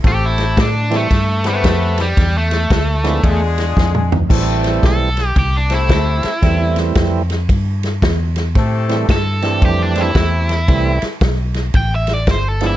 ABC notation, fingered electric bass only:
X:1
M:4/4
L:1/8
Q:"Swing" 1/4=113
K:Am
V:1 name="Fingered electric bass" clef=bass
A,,,2 A,,2 G,,2 F,,2 | E,,2 D,,2 E,,2 F,,2 | A,,,2 B,,,2 C,,2 D,, z | E,,2 F,,2 G,,2 E,,2 |
A,,2 G,,2 F,,2 E,,2 | C,, z B,,,2 A,,,2 G,,,2 |]